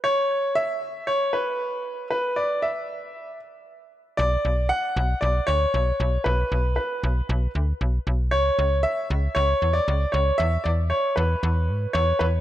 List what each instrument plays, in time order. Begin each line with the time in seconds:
0.04 grand piano C#5
0.55 grand piano E5
1.07 grand piano C#5
1.33 grand piano B4
2.11 grand piano B4
2.36 grand piano D5
2.62 grand piano E5
4.17 fm bass B1, grand piano D5
4.45 fm bass B1
4.69 grand piano F#5
4.96 fm bass B1
5.21 fm bass B1, grand piano D5
5.47 fm bass D2, grand piano C#5
5.74 fm bass B1
6.00 fm bass B1
6.24 fm bass B1, grand piano B4
6.52 fm bass B1
6.76 grand piano B4
7.03 fm bass B1
7.29 fm bass B1
7.55 fm bass D2
7.81 fm bass B1
8.07 fm bass B1
8.31 fm bass C#2, grand piano C#5
8.59 fm bass C#2
8.83 grand piano E5
9.10 fm bass C#2
9.35 fm bass C#2, grand piano C#5
9.62 fm bass E2
9.73 grand piano D5
9.88 fm bass C#2
10.12 fm bass C#2, grand piano C#5
10.38 fm bass E2, grand piano E5
10.64 fm bass E2, grand piano D5
10.90 grand piano C#5
11.16 fm bass E2, grand piano B4
11.43 fm bass E2
11.69 fm bass G#2
11.93 fm bass E2, grand piano C#5
12.19 fm bass E2, grand piano B4